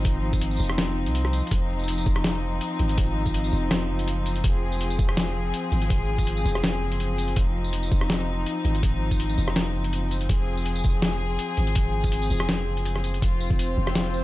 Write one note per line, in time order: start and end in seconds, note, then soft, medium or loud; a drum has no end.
0.00 0.59 G#1 medium
0.00 13.18 F3 medium
0.00 13.18 C4 medium
0.00 1.49 D#4 medium
0.05 kick loud
0.05 closed hi-hat medium
0.33 kick medium
0.33 tambourine medium
0.41 closed hi-hat medium
0.51 tambourine soft
0.57 0.98 F1 loud
0.57 tambourine soft
0.60 tambourine medium
0.63 tambourine medium
0.70 cross-stick medium
0.78 snare loud
0.78 closed hi-hat medium
0.97 1.08 F#1 medium
1.06 1.42 C2 medium
1.06 closed hi-hat soft
1.15 closed hi-hat medium
1.25 cross-stick soft
1.33 closed hi-hat soft
1.33 tambourine medium
1.47 closed hi-hat soft
1.51 2.05 F1 loud
1.51 4.43 D#4 medium
1.51 kick loud
1.51 closed hi-hat medium
1.79 tambourine soft
1.84 tambourine soft
1.88 closed hi-hat medium
1.88 tambourine soft
1.93 tambourine medium
1.98 tambourine medium
2.06 2.60 F1 loud
2.06 kick loud
2.06 tambourine medium
2.16 cross-stick medium
2.24 snare loud
2.24 closed hi-hat medium
2.61 closed hi-hat medium
2.79 3.52 G#1 medium
2.79 closed hi-hat soft
2.89 closed hi-hat soft
2.98 kick loud
2.98 closed hi-hat medium
3.26 kick medium
3.26 tambourine medium
3.34 closed hi-hat medium
3.44 tambourine medium
3.53 3.91 F1 loud
3.53 tambourine medium
3.71 cross-stick medium
3.71 snare loud
3.71 closed hi-hat medium
3.90 4.43 F#1 loud
3.99 closed hi-hat soft
4.08 closed hi-hat medium
4.26 closed hi-hat soft
4.26 tambourine medium
4.36 closed hi-hat soft
4.44 4.98 F1 loud
4.44 7.36 G#4 medium
4.44 kick loud
4.44 closed hi-hat medium
4.72 tambourine medium
4.81 closed hi-hat medium
4.90 tambourine medium
4.99 5.53 F1 loud
4.99 kick loud
4.99 tambourine medium
5.09 cross-stick medium
5.17 snare loud
5.17 closed hi-hat medium
5.54 closed hi-hat medium
5.72 6.44 G#1 medium
5.72 closed hi-hat soft
5.82 closed hi-hat soft
5.90 kick loud
5.90 closed hi-hat medium
6.19 kick medium
6.19 tambourine medium
6.27 closed hi-hat medium
6.37 tambourine medium
6.45 6.83 F1 loud
6.45 tambourine medium
6.55 cross-stick soft
6.64 snare loud
6.64 closed hi-hat medium
6.82 7.36 F#1 loud
6.92 closed hi-hat soft
7.00 closed hi-hat medium
7.18 closed hi-hat soft
7.18 tambourine medium
7.28 closed hi-hat soft
7.36 7.91 F1 loud
7.36 10.29 D#4 medium
7.36 kick loud
7.36 closed hi-hat medium
7.64 tambourine medium
7.73 closed hi-hat medium
7.83 tambourine medium
7.92 8.46 F1 loud
7.92 kick loud
7.92 tambourine medium
8.01 cross-stick soft
8.10 snare loud
8.10 closed hi-hat medium
8.46 closed hi-hat medium
8.65 9.37 G#1 medium
8.65 closed hi-hat soft
8.75 closed hi-hat soft
8.83 kick loud
8.83 closed hi-hat medium
9.11 kick medium
9.11 tambourine medium
9.20 closed hi-hat medium
9.30 tambourine medium
9.38 9.76 F1 loud
9.38 tambourine medium
9.48 cross-stick medium
9.56 snare loud
9.56 closed hi-hat medium
9.75 10.29 F#1 loud
9.84 closed hi-hat soft
9.93 closed hi-hat medium
10.11 closed hi-hat soft
10.11 tambourine medium
10.21 closed hi-hat soft
10.29 10.83 F1 loud
10.29 13.21 G#4 medium
10.29 kick loud
10.29 closed hi-hat medium
10.57 tambourine medium
10.66 closed hi-hat medium
10.75 tambourine medium
10.84 11.38 F1 loud
10.84 kick loud
10.84 tambourine medium
11.02 snare loud
11.02 closed hi-hat medium
11.39 closed hi-hat medium
11.57 12.30 G#1 medium
11.57 closed hi-hat soft
11.67 closed hi-hat soft
11.75 kick loud
11.75 closed hi-hat medium
12.04 kick medium
12.04 tambourine medium
12.12 closed hi-hat medium
12.22 tambourine medium
12.30 12.69 F1 loud
12.30 tambourine medium
12.40 cross-stick medium
12.49 snare loud
12.49 closed hi-hat medium
12.67 13.21 F#1 loud
12.77 closed hi-hat soft
12.85 closed hi-hat medium
12.96 cross-stick soft
13.04 closed hi-hat soft
13.04 tambourine medium
13.14 closed hi-hat soft
13.22 13.76 F1 loud
13.22 14.24 F3 medium
13.22 14.24 C4 medium
13.22 14.24 F4 medium
13.22 14.24 C5 medium
13.22 kick loud
13.22 closed hi-hat medium
13.41 tambourine medium
13.50 kick loud
13.50 tambourine medium
13.59 closed hi-hat medium
13.59 tambourine soft
13.77 14.24 F1 loud
13.87 cross-stick medium
13.95 snare loud
13.95 closed hi-hat medium
14.14 tambourine soft